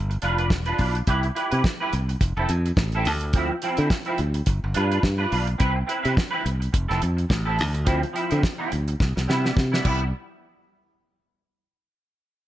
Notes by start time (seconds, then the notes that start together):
Already playing: G1
0.10 muted clean electric guitar stroke, closed hi-hat
0.22 F1 D4 F4 B4, closed hi-hat
0.38 D4 F4 B4, closed hi-hat
0.50 E1, muted clean electric guitar stroke, kick, snare
0.66 D4 F4 B4, closed hi-hat
0.79 B1 D4 F4 B4, kick, open hi-hat
0.95 muted clean electric guitar stroke, closed hi-hat
1.07 C2 E4 G4 B4, kick, closed hi-hat
1.23 muted clean electric guitar stroke, closed hi-hat
1.35 E4 G4 B4, closed hi-hat
1.51 C3 E4 G4 B4, closed hi-hat
1.64 muted clean electric guitar stroke, kick, snare
1.80 E4 G4 B4
1.93 C2, muted clean electric guitar stroke, closed hi-hat
2.09 muted clean electric guitar stroke, closed hi-hat
2.21 F1, muted clean electric guitar stroke, kick, closed hi-hat
2.37 F1 C4 E4 A4
2.49 F2, muted clean electric guitar stroke, closed hi-hat
2.66 muted clean electric guitar stroke, closed hi-hat
2.77 A1, muted clean electric guitar stroke, kick, snare
2.92 E4 A4, closed hi-hat
2.97 C4
3.05 D2, muted clean electric guitar stroke, open hi-hat
3.21 muted clean electric guitar stroke, closed hi-hat
3.33 F3 C4, kick, closed hi-hat
3.37 E4
3.51 muted clean electric guitar stroke
3.62 F3 C4 E4, closed hi-hat
3.77 D3 F3 C4 E4, closed hi-hat
3.90 muted clean electric guitar stroke, kick, snare
4.05 F3 C4 E4, closed hi-hat
4.18 D2, muted clean electric guitar stroke, closed hi-hat
4.34 muted clean electric guitar stroke, closed hi-hat
4.46 G1, muted clean electric guitar stroke, kick, closed hi-hat
4.64 G1, muted clean electric guitar stroke
4.74 G2 D4 F4 B4, closed hi-hat
4.91 D4 F4 B4, closed hi-hat
5.03 G2, muted clean electric guitar stroke, kick, snare
5.18 D4 F4 B4
5.30 B1 D4 F4 B4, open hi-hat
5.46 muted clean electric guitar stroke, closed hi-hat
5.58 C2 C4 E4 B4, kick, closed hi-hat
5.74 muted clean electric guitar stroke
5.87 C4 E4 B4, closed hi-hat
6.03 C3 C4 E4 B4, closed hi-hat
6.14 muted clean electric guitar stroke, kick, snare
6.31 C4 E4 B4
6.44 C2, muted clean electric guitar stroke, closed hi-hat
6.60 muted clean electric guitar stroke, closed hi-hat
6.73 F1, muted clean electric guitar stroke, kick, closed hi-hat
6.88 F1 C4 E4 A4, snare
7.01 F2, muted clean electric guitar stroke, closed hi-hat
7.17 muted clean electric guitar stroke, closed hi-hat
7.29 A1, muted clean electric guitar stroke, kick, snare
7.45 C4 E4 A4
7.57 D2, muted clean electric guitar stroke, open hi-hat
7.74 muted clean electric guitar stroke, closed hi-hat
7.85 F3 C4 E4, kick, closed hi-hat
8.01 muted clean electric guitar stroke, closed hi-hat
8.13 F3 C4 E4, closed hi-hat
8.30 D3 F3 C4 E4, closed hi-hat
8.43 muted clean electric guitar stroke, kick, snare
8.58 F3 C4 E4
8.72 D2, muted clean electric guitar stroke, closed hi-hat
8.88 muted clean electric guitar stroke, closed hi-hat
9.00 C2, muted clean electric guitar stroke, kick, snare
9.16 C2, muted clean electric guitar stroke, snare
9.28 C3 G3 B3 E4, snare
9.45 G3 B3 E4, snare
9.57 C3, muted clean electric guitar stroke, kick, snare
9.72 G3 B3 E4, snare
9.84 C2 G3 B3 E4, kick, crash